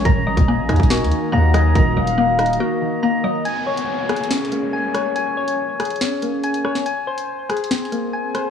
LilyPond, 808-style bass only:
\new Staff \with { instrumentName = "808-style bass" } { \clef bass \time 4/4 \key bes \minor \tempo 4 = 141 ees,,8 bes,,16 ees,,8 bes,,16 ees,16 ees,,8 ees,16 r8 ees,4 | ees,,8 ees,,4. r2 | r1 | r1 |
r1 | }